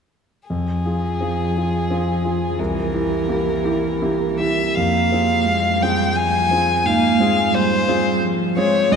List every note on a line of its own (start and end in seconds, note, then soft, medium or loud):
0.49 0.84 F2 soft
0.49 2.55 F3 soft
0.49 2.61 G#4 soft
0.86 1.17 F4 soft
0.86 1.17 G#4 soft
1.21 1.52 C4 soft
1.21 1.53 F4 soft
1.21 1.53 G#4 soft
1.57 1.88 F4 soft
1.57 1.88 G#4 soft
1.90 2.21 C4 soft
1.90 2.22 F4 soft
1.90 2.22 G#4 soft
2.25 2.56 F4 soft
2.25 2.56 G#4 soft
2.59 2.93 C2 soft
2.59 4.52 E3 soft
2.59 4.39 A#4 soft
2.94 3.25 E4 soft
2.94 3.25 G4 soft
3.28 3.60 A#3 soft
3.28 3.61 E4 soft
3.28 3.61 G4 soft
3.65 3.98 E4 soft
3.65 3.98 G4 soft
4.02 4.36 A#3 soft
4.02 4.36 E4 soft
4.02 4.36 G4 soft
4.40 4.73 E4 soft
4.40 4.73 G4 soft
4.40 4.77 E5 medium
4.75 5.11 F2 soft
4.75 5.47 A#3 soft
4.75 5.84 F5 medium
5.12 5.79 C4 soft
5.12 5.79 F4 soft
5.12 5.79 G#4 soft
5.46 5.82 G#3 soft
5.81 6.16 G3 soft
5.81 6.48 C4 soft
5.81 6.48 F4 soft
5.81 6.49 G#4 soft
5.81 6.18 G5 medium
6.15 6.85 F3 soft
6.15 6.88 G#5 medium
6.51 6.83 C4 soft
6.51 6.83 F4 soft
6.51 6.83 G#4 soft
6.86 7.19 G#2 soft
6.86 7.21 A#3 soft
6.86 7.56 F5 medium
7.19 7.53 G#3 soft
7.19 7.85 C4 soft
7.19 7.85 F4 soft
7.19 7.85 G#4 soft
7.54 8.23 G3 soft
7.54 8.24 C5 medium
7.88 8.54 C4 soft
7.88 8.54 F4 soft
7.88 8.54 G#4 soft
8.22 8.59 F3 medium
8.57 8.92 G#3 medium
8.57 8.88 C4 soft
8.57 8.88 F4 soft
8.57 8.88 G#4 soft
8.57 8.94 C#5 medium
8.92 8.96 A#1 medium
8.92 8.96 G3 medium
8.92 8.96 D#5 medium